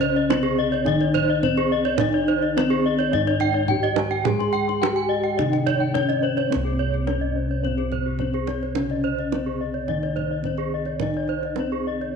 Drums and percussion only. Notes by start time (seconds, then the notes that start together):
0.03 kendang slap
0.16 kendang slap
0.30 kendang high
0.74 kendang slap
0.86 kendang slap, kendang low
1.01 kendang slap
1.15 kendang low
1.43 kendang low
1.57 kendang slap
1.85 kendang slap
1.98 kendang high, kendang low
2.13 kendang slap
2.28 kendang slap
2.42 kendang slap
2.58 kendang high
3.00 kendang slap
3.13 kendang slap, kendang low
3.27 kendang slap
3.40 kendang low
3.68 kendang low
3.84 kendang slap
3.96 kendang high
4.11 kendang slap
4.25 kendang high, kendang low
4.40 kendang slap
4.55 kendang slap
4.69 kendang slap
4.83 kendang slap, kendang high
5.39 kendang slap, kendang low
5.53 kendang slap
5.67 kendang slap, kendang low
5.95 kendang low
6.10 kendang slap
6.38 kendang slap
6.52 kendang high, kendang low
6.66 kendang slap
6.80 kendang slap
6.94 kendang slap
7.07 kendang high
7.65 kendang slap, kendang low
7.78 kendang slap
7.92 kendang low
8.19 kendang low
8.34 kendang slap
8.47 kendang high
8.63 kendang slap
8.75 kendang high, kendang low
8.90 kendang slap
9.05 kendang slap
9.19 kendang slap
9.32 kendang high
9.88 kendang slap, kendang low
10.03 kendang slap
10.17 kendang low
10.44 kendang low
10.57 kendang slap
10.85 kendang slap
11.00 kendang high, kendang low
11.14 kendang slap
11.28 kendang slap
11.43 kendang slap
11.56 kendang high
12.01 kendang slap